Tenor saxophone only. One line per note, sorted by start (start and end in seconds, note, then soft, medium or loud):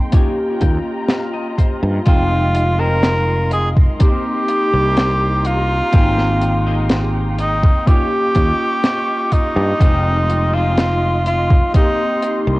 2.07 2.81 F4 loud
2.80 3.52 A#4 loud
3.53 3.69 G#4 loud
4.01 5.48 G4 loud
5.46 7.13 F4 loud
7.40 7.89 D#4 loud
7.88 9.34 G4 loud
9.33 10.56 D#4 loud
10.54 11.26 F4 loud
11.27 11.71 F4 loud
11.75 12.41 D#4 loud